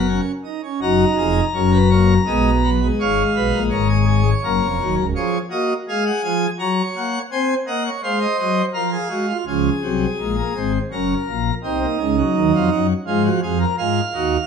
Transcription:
0.00 0.20 F#1 medium
0.00 0.20 F#2 medium
0.00 0.21 A#4 medium
0.00 0.20 F#5 medium
0.09 0.32 C#4 medium
0.45 0.61 D#4 medium
0.64 0.80 C#4 medium
0.82 1.05 F#1 medium
0.82 1.05 F#2 medium
0.82 1.45 D#4 medium
0.82 1.05 F#4 medium
0.82 2.70 A#5 medium
1.17 1.41 F1 medium
1.17 1.41 F2 medium
1.17 1.40 G#4 medium
1.54 2.18 F#1 medium
1.54 2.18 F#2 medium
1.54 1.78 C#4 medium
1.54 1.71 A#4 medium
1.73 1.89 B4 medium
1.90 2.14 A#3 medium
1.90 2.14 C#5 medium
2.27 2.90 B1 medium
2.27 2.90 B2 medium
2.27 2.50 G#3 medium
2.27 2.50 D#5 medium
2.64 2.80 F#3 medium
2.64 2.87 B4 medium
2.83 4.22 G#3 medium
3.00 3.23 G#1 medium
3.00 3.23 G#2 medium
3.00 3.23 C#5 medium
3.00 3.63 F5 medium
3.36 3.52 B1 medium
3.36 3.52 B2 medium
3.36 3.59 B4 medium
3.54 3.70 A#1 medium
3.54 3.70 A#2 medium
3.70 4.33 G#1 medium
3.70 4.33 G#2 medium
3.70 3.87 A#4 medium
3.70 4.95 C#5 medium
3.89 4.05 G#4 medium
4.07 4.30 G#4 medium
4.44 4.60 F#1 medium
4.44 4.60 F#2 medium
4.44 4.67 A#3 medium
4.44 5.06 A#4 medium
4.63 4.78 F1 medium
4.63 4.78 F2 medium
4.81 4.96 D#1 medium
4.81 4.96 D#2 medium
4.81 5.03 F#3 medium
4.98 5.14 C#1 medium
4.98 5.14 C#2 medium
5.15 5.38 F3 medium
5.15 5.38 G#4 medium
5.15 5.38 C#5 medium
5.50 5.73 A#3 medium
5.50 5.73 F#4 medium
5.50 5.74 D#5 medium
5.88 6.11 G#3 medium
5.88 6.50 G#4 medium
5.88 6.04 F5 medium
6.06 6.22 F#5 medium
6.24 6.46 F3 medium
6.24 6.46 G#5 loud
6.59 6.82 F#3 medium
6.59 7.21 C#5 medium
6.59 6.82 A#5 loud
6.96 7.18 A#3 medium
6.96 7.19 F#5 medium
7.32 7.54 C4 medium
7.32 7.54 C5 medium
7.32 7.54 G#5 loud
7.67 7.89 A#3 medium
7.67 7.83 D#5 medium
7.67 7.90 F#5 medium
7.86 8.01 C#5 medium
8.03 8.26 G#3 medium
8.03 8.65 C5 medium
8.03 8.19 F5 medium
8.21 8.37 D#5 loud
8.39 8.62 F#3 medium
8.39 8.62 D#5 loud
8.74 8.97 F3 medium
8.74 8.90 A#4 medium
8.74 9.37 F5 medium
8.92 9.08 G#4 medium
9.09 9.32 G#3 medium
9.09 9.26 F#4 medium
9.29 9.45 F4 medium
9.46 9.69 C#2 medium
9.46 9.70 C#3 medium
9.46 9.70 F3 medium
9.46 10.72 G#4 medium
9.83 10.06 C2 medium
9.83 10.06 C3 medium
9.83 10.06 F#3 medium
10.20 10.42 A#1 medium
10.20 10.42 A#2 medium
10.20 10.36 G#3 medium
10.38 10.53 A#3 medium
10.55 10.78 G#1 medium
10.55 10.78 G#2 medium
10.55 10.78 C4 medium
10.92 11.14 F#1 medium
10.92 11.14 F#2 medium
10.92 11.14 C#4 medium
10.92 11.54 A#4 medium
11.29 11.51 A#1 medium
11.29 11.51 A#2 medium
11.29 11.51 A#3 medium
11.64 11.86 C2 medium
11.64 11.86 C3 medium
11.64 11.79 C4 medium
11.64 12.87 D#4 medium
11.82 11.98 A#3 medium
12.00 12.22 C#2 medium
12.00 12.22 C#3 medium
12.00 12.15 G#3 medium
12.18 12.69 F#3 medium
12.36 12.51 D#2 medium
12.36 12.51 D#3 medium
12.55 12.69 F2 medium
12.55 12.70 F3 medium
12.71 12.94 F#2 loud
12.71 12.93 F#3 medium
13.07 13.29 G#2 medium
13.07 13.41 F3 medium
13.07 13.29 G#3 medium
13.07 13.22 F4 medium
13.25 13.40 F#4 medium
13.43 13.65 F2 medium
13.43 13.65 F3 medium
13.43 13.58 G#4 medium
13.60 13.75 A#4 medium
13.78 14.00 G#2 medium
13.78 14.00 G#3 medium
13.78 14.00 F4 loud
13.78 14.47 F5 medium
14.14 14.37 D#2 medium
14.14 14.36 D#3 medium
14.14 14.37 F#4 medium

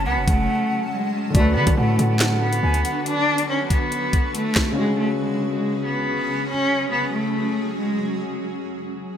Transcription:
0.00 1.33 F#3 medium
0.00 1.33 C#4 medium
0.00 1.33 A5 medium
0.06 0.18 C#2 loud
0.06 0.23 B3 medium
0.06 1.10 F#5 loud
0.17 0.27 F#1 loud
0.28 0.48 F#1 loud
0.28 0.88 A3 medium
0.28 kick loud
0.28 closed hi-hat medium
0.92 1.32 G#3 medium
1.30 4.71 D3 medium
1.30 4.73 D4 medium
1.34 1.58 D2 loud
1.34 4.74 D3 medium
1.34 1.52 A3 loud
1.34 4.74 D4 medium
1.34 6.45 F#4 medium
1.34 4.74 F#4 medium
1.34 4.74 B4 medium
1.34 1.75 D5 loud
1.34 kick loud
1.34 closed hi-hat medium
1.40 4.76 B4 medium
1.56 1.66 D3 loud
1.56 1.73 B3 medium
1.67 1.77 D3 loud
1.67 kick loud
1.67 closed hi-hat medium
1.77 1.98 A2 loud
1.77 2.08 A3 medium
1.77 1.98 F#5 medium
1.99 2.61 A2 loud
1.99 2.60 F#5 medium
1.99 closed hi-hat medium
2.09 2.40 A3 medium
2.20 snare loud
2.20 clap loud
2.20 closed hi-hat medium
2.42 3.02 B3 medium
2.53 closed hi-hat medium
2.63 2.84 D2 loud
2.63 2.84 G#5 medium
2.74 closed hi-hat medium
2.85 3.05 F#5 medium
2.85 closed hi-hat medium
3.06 3.46 D4 loud
3.06 closed hi-hat medium
3.38 closed hi-hat medium
3.49 3.66 C#4 medium
3.70 4.31 B3 medium
3.70 kick medium
3.70 closed hi-hat medium
3.92 closed hi-hat medium
4.13 kick medium
4.13 closed hi-hat medium
4.35 4.75 A3 medium
4.35 closed hi-hat medium
4.55 kick loud
4.55 cross-stick medium
4.55 snare loud
4.55 clap medium
4.55 closed hi-hat medium
4.72 6.43 C#3 medium
4.72 6.44 C#4 medium
4.77 6.47 C#3 medium
4.77 4.95 G#3 loud
4.77 8.17 C#4 medium
4.77 6.46 F#4 medium
4.77 8.17 G#4 medium
4.82 6.48 G#4 medium
4.99 5.16 A3 medium
5.20 5.50 G#3 medium
5.53 5.83 G#3 medium
5.85 6.45 B3 medium
6.49 8.19 F#3 medium
6.49 6.89 C#4 loud
6.49 8.19 F#4 medium
6.92 7.09 B3 medium
7.13 7.74 A3 medium
7.78 8.18 G#3 medium

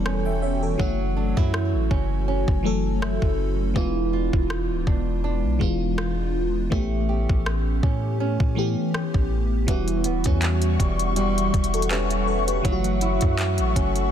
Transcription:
0.00 0.76 E1 loud
0.00 0.69 E3 medium
0.00 0.83 E3 medium
0.00 0.69 G3 medium
0.00 0.79 G3 medium
0.00 0.69 B3 medium
0.00 0.70 C#4 medium
0.00 0.63 A4 medium
0.06 1.20 C#4 medium
0.06 cross-stick loud
0.25 0.41 E5 medium
0.25 0.42 G5 medium
0.42 0.61 C#5 medium
0.42 0.61 E5 medium
0.63 0.98 A4 medium
0.63 0.98 C#5 medium
0.78 1.34 F#1 loud
0.78 2.13 E3 medium
0.78 2.14 F#3 medium
0.78 3.76 F#3 medium
0.78 2.14 A3 medium
0.78 2.15 C#4 medium
0.78 2.15 F#4 medium
0.78 kick loud
1.17 1.37 D4 medium
1.37 1.75 F#2 loud
1.37 3.01 E4 medium
1.37 kick medium
1.54 cross-stick loud
1.74 1.90 A1 medium
1.91 2.46 F#1 loud
1.91 2.27 C#4 medium
1.91 kick medium
2.28 3.84 C#4 medium
2.48 3.19 F#1 loud
2.48 kick loud
2.63 3.65 E3 medium
2.63 3.65 F#3 medium
2.63 3.66 A3 medium
2.63 3.66 C#4 medium
2.63 3.67 A4 medium
3.02 4.13 E4 medium
3.02 cross-stick loud
3.22 3.74 F#1 loud
3.22 kick medium
3.74 4.30 E1 loud
3.74 5.10 E3 medium
3.74 7.26 E3 medium
3.74 5.10 G#3 medium
3.74 5.11 B3 medium
3.74 5.11 D4 medium
3.74 5.11 F4 medium
3.74 kick loud
4.13 5.97 F4 medium
4.33 4.71 E1 loud
4.33 kick medium
4.50 cross-stick loud
4.70 4.86 D1 medium
4.87 5.45 E1 loud
4.87 5.23 D4 medium
4.87 kick medium
5.24 6.80 D4 medium
5.44 5.60 B1 loud
5.59 6.68 E1 loud
5.59 6.61 E3 medium
5.59 6.62 G#3 medium
5.59 6.62 B3 medium
5.59 6.62 D4 medium
5.59 6.63 F4 medium
5.59 kick medium
5.98 6.80 F4 medium
5.98 cross-stick loud
6.70 7.27 A1 loud
6.70 8.06 E3 medium
6.70 8.06 A3 medium
6.70 9.68 A3 medium
6.70 8.07 B3 medium
6.70 8.07 C#4 medium
6.70 8.08 G4 medium
6.70 kick loud
7.09 8.94 G4 medium
7.29 7.81 A1 loud
7.29 kick medium
7.46 cross-stick loud
7.83 8.38 A2 medium
7.83 8.20 C#4 medium
7.83 kick medium
8.20 10.05 C#4 medium
8.40 8.76 A2 loud
8.40 kick loud
8.55 9.57 E3 medium
8.55 9.58 A3 medium
8.55 9.58 B3 medium
8.55 9.59 C#4 medium
8.55 9.59 G4 medium
8.94 10.29 G4 medium
8.94 cross-stick loud
9.14 9.66 A1 loud
9.14 kick medium
9.67 11.02 E3 medium
9.67 12.68 E3 medium
9.67 11.03 G3 medium
9.67 12.62 G3 medium
9.67 11.03 B3 medium
9.67 11.04 C#4 medium
9.67 11.04 F#4 medium
9.67 14.12 E5 medium
9.67 14.12 F#5 medium
9.67 12.62 C#6 medium
9.67 kick loud
9.67 closed hi-hat medium
9.88 closed hi-hat soft
10.04 10.24 D1 medium
10.04 10.26 B3 medium
10.04 closed hi-hat medium
10.24 10.78 E2 loud
10.24 11.89 C#4 medium
10.24 kick medium
10.24 closed hi-hat medium
10.42 clap loud
10.42 closed hi-hat medium
10.62 closed hi-hat soft
10.80 11.51 E1 loud
10.80 11.15 G3 medium
10.80 kick medium
10.80 closed hi-hat medium
10.99 closed hi-hat soft
11.16 12.64 G3 medium
11.16 closed hi-hat medium
11.38 closed hi-hat soft
11.54 12.61 E1 loud
11.54 kick medium
11.54 closed hi-hat soft
11.64 closed hi-hat medium
11.74 11.90 F#4 medium
11.74 11.90 A4 medium
11.74 closed hi-hat medium
11.82 closed hi-hat medium
11.90 13.75 C#4 medium
11.90 12.26 G4 medium
11.90 12.26 B4 medium
11.90 clap loud
11.90 closed hi-hat medium
12.10 closed hi-hat medium
12.27 12.47 A4 medium
12.27 12.46 C#5 medium
12.47 12.83 G4 medium
12.47 12.83 B4 medium
12.47 closed hi-hat medium
12.63 13.19 F#1 loud
12.63 13.98 E3 medium
12.63 13.99 F#3 medium
12.63 14.12 F#3 medium
12.63 13.99 A3 medium
12.63 14.00 C#4 medium
12.63 12.72 F4 medium
12.63 14.12 A4 medium
12.63 14.12 C#6 medium
12.63 kick loud
12.63 closed hi-hat medium
12.72 14.03 F#4 medium
12.84 closed hi-hat soft
13.01 14.12 E4 medium
13.01 closed hi-hat medium
13.21 13.60 F#2 loud
13.21 kick medium
13.21 closed hi-hat medium
13.38 clap loud
13.38 closed hi-hat medium
13.58 13.75 A1 medium
13.58 closed hi-hat soft
13.76 14.12 F#1 loud
13.76 14.12 C#4 medium
13.76 kick medium
13.76 closed hi-hat medium
13.96 closed hi-hat soft

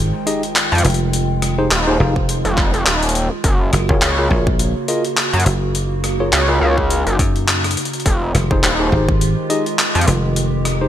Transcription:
0.00 0.12 G#1 medium
0.00 3.40 D#3 medium
0.00 3.40 G#3 medium
0.00 5.71 F4 medium
0.00 3.40 G5 medium
0.00 impact medium
0.27 0.41 D#4 medium
0.27 0.41 G4 medium
0.27 0.41 G#4 medium
0.27 0.41 D#5 loud
0.27 closed hi-hat medium
0.43 closed hi-hat soft
0.56 clap loud
0.56 closed hi-hat medium
0.72 0.83 F2 loud
0.72 closed hi-hat soft
0.75 closed hi-hat soft
0.78 closed hi-hat medium
0.80 closed hi-hat soft
0.85 1.69 F1 loud
0.85 closed hi-hat medium
0.90 closed hi-hat soft
0.94 closed hi-hat soft
1.13 closed hi-hat medium
1.42 cross-stick medium
1.42 closed hi-hat medium
1.58 1.69 D#4 medium
1.58 1.69 G4 medium
1.58 1.69 G#4 medium
1.58 1.69 C5 loud
1.71 1.98 D#1 loud
1.71 clap loud
1.71 closed hi-hat medium
1.87 1.98 D#4 medium
1.87 1.98 G4 medium
1.87 1.98 G#4 medium
1.87 1.98 C5 loud
2.00 2.42 F1 loud
2.00 2.14 D#4 medium
2.00 2.14 G4 medium
2.00 2.14 G#4 medium
2.00 2.14 F5 medium
2.16 kick medium
2.29 closed hi-hat medium
2.45 2.71 F1 loud
2.45 closed hi-hat soft
2.58 kick loud
2.58 clap medium
2.74 2.85 F1 loud
2.74 closed hi-hat soft
2.86 3.29 D#1 loud
2.86 clap loud
2.86 closed hi-hat medium
3.03 closed hi-hat medium
3.09 closed hi-hat medium
3.15 closed hi-hat medium
3.44 3.71 F#1 medium
3.44 8.02 C#3 medium
3.44 8.02 A#3 medium
3.44 8.02 F#4 loud
3.44 kick loud
3.44 closed hi-hat medium
3.73 3.87 F#1 loud
3.73 cross-stick medium
3.73 closed hi-hat medium
3.89 4.00 F#1 loud
3.89 4.08 F4 loud
3.89 4.08 G#4 medium
3.89 4.08 A#4 medium
3.89 4.08 C#5 loud
3.89 kick loud
4.02 4.29 C#2 loud
4.02 clap loud
4.02 closed hi-hat medium
4.18 4.29 F4 medium
4.18 4.29 G#4 medium
4.18 4.29 A#4 medium
4.18 4.29 C#5 medium
4.31 4.73 A#1 loud
4.31 4.45 F4 medium
4.31 4.45 G#4 medium
4.31 4.45 A#4 medium
4.31 4.45 C#5 loud
4.31 kick medium
4.47 kick loud
4.59 closed hi-hat medium
4.88 5.02 F4 loud
4.88 5.02 G#4 medium
4.88 5.02 A#4 medium
4.88 5.02 D#5 loud
4.88 closed hi-hat medium
5.05 closed hi-hat soft
5.17 clap loud
5.17 closed hi-hat medium
5.33 5.44 F#2 loud
5.33 closed hi-hat medium
5.40 closed hi-hat medium
5.46 6.31 F#1 loud
5.46 closed hi-hat medium
5.75 8.03 D#4 medium
5.75 closed hi-hat medium
6.04 cross-stick medium
6.04 closed hi-hat medium
6.20 6.31 F4 medium
6.20 6.31 G#4 medium
6.20 6.31 A#4 medium
6.20 6.31 C#5 medium
6.33 6.59 C#2 loud
6.33 clap loud
6.33 closed hi-hat medium
6.49 6.60 F4 medium
6.49 6.60 G#4 medium
6.49 6.60 A#4 medium
6.49 6.60 C#5 loud
6.61 7.04 C#2 medium
6.61 6.75 F4 medium
6.61 6.75 G#4 medium
6.61 6.75 A#4 medium
6.61 6.75 F5 medium
6.78 kick medium
6.90 closed hi-hat medium
7.07 7.17 F#1 loud
7.07 closed hi-hat soft
7.19 7.75 F#2 loud
7.19 kick loud
7.19 closed hi-hat medium
7.36 closed hi-hat soft
7.48 clap loud
7.48 closed hi-hat medium
7.64 cross-stick medium
7.64 closed hi-hat soft
7.71 closed hi-hat medium
7.77 closed hi-hat medium
7.85 closed hi-hat medium
7.93 closed hi-hat soft
8.00 closed hi-hat soft
8.05 8.33 F1 loud
8.05 10.88 D#3 medium
8.05 10.88 G#3 medium
8.05 10.34 F4 medium
8.05 10.88 G4 loud
8.05 kick loud
8.05 closed hi-hat medium
8.35 8.48 F1 medium
8.35 cross-stick soft
8.35 closed hi-hat medium
8.51 8.61 F1 loud
8.51 8.69 D#4 medium
8.51 8.69 G4 medium
8.51 8.69 G#4 medium
8.51 8.69 C5 loud
8.51 kick loud
8.64 8.90 D#1 loud
8.64 clap loud
8.64 closed hi-hat medium
8.80 8.90 D#4 medium
8.80 8.90 G4 medium
8.80 8.90 G#4 medium
8.80 8.90 C5 medium
8.92 9.35 G#1 loud
8.92 9.06 D#4 medium
8.92 9.06 G4 medium
8.92 9.06 G#4 medium
8.92 9.06 C5 medium
8.92 kick medium
9.09 kick loud
9.21 closed hi-hat medium
9.50 9.64 D#4 medium
9.50 9.64 G4 medium
9.50 9.64 G#4 medium
9.50 9.64 D#5 loud
9.50 closed hi-hat medium
9.66 closed hi-hat soft
9.79 clap loud
9.79 closed hi-hat medium
9.95 10.06 F2 loud
9.95 closed hi-hat soft
10.01 closed hi-hat medium
10.08 10.88 F1 loud
10.08 closed hi-hat medium
10.36 10.88 D#4 medium
10.36 closed hi-hat medium
10.65 cross-stick medium
10.65 closed hi-hat medium
10.81 10.88 D#4 medium
10.81 10.88 G4 medium
10.81 10.88 G#4 medium
10.81 10.88 C5 loud

